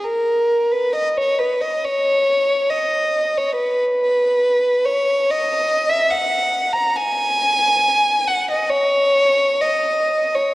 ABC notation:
X:1
M:4/4
L:1/16
Q:1/4=69
K:C#dor
V:1 name="Violin"
A3 B d c B d c4 d3 c | B6 c2 d3 e f3 a | g6 f d c4 d3 c |]